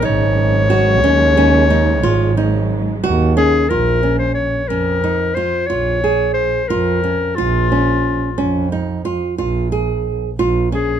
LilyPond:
<<
  \new Staff \with { instrumentName = "Clarinet" } { \time 11/8 \key bes \minor \tempo 4 = 90 des''1~ des''8 r8 aes'8 | bes'8. c''16 des''8 bes'4 c''8 des''4 c''8 bes'4 | f'2 r2. aes'8 | }
  \new Staff \with { instrumentName = "Nylon-string guitar" } { \time 11/8 \key bes \minor ees'4 ges'8 des'8 des'8 ees'8 f'8 ees'4 ges'8 des'8 | f'8 des'4 des'8 ees'8 f'8 f'8 aes'4 f'8 des'8 | f'8 des'4 des'8 ees'8 f'8 f'8 aes'4 f'8 des'8 | }
  \new Staff \with { instrumentName = "String section" } { \clef bass \time 11/8 \key bes \minor << { <des aes>1~ <des aes>4. | r1 r4. | r1 r4. | } \\ { ges2~ ges8. ges2~ ges8. | r1 r4. | r1 r4. | } >> }
  \new Staff \with { instrumentName = "Double bass" } { \clef bass \time 11/8 \key bes \minor aes,,4. ees,4. aes,,4. ees,4 | bes,,4. f,4. bes,,4. f,4 | bes,,4. f,4. bes,,4. bes,,4 | }
>>